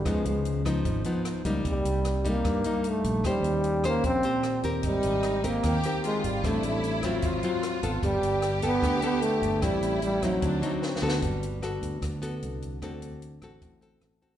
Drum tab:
HH |x--x--x--x--x--x--x--x--|x--x--x--x--x--x--x--x--|x--x--x--x--x--x--x--x--|x--x--x--x--x--x--x--x--|
SD |r--------r--------r-----|------r-----r-----------|r--------r--------r-----|------r-----r-----------|
BD |o--------o--o--------o--|o--------o--o--------o--|o--------o--o--------o--|o--------o--o--------o--|

HH |x--x--x--x--x--x--x--x--|x--x--x--x--x--x--x--x--|x--x--x--x--x--x--------|x--x--x--x--x--x--x--x--|
SD |r--------r--------r-----|------r-----r-----------|r--------r--------o-o-o-|------r-----r-----------|
BD |o--------o--o--------o--|o--------o--o--------o--|o--------o--o-----------|o--------o--o--------o--|

HH |x--x--x--x--x--x--x--x--|
SD |r--------r--------r-----|
BD |o--------o--o--------o--|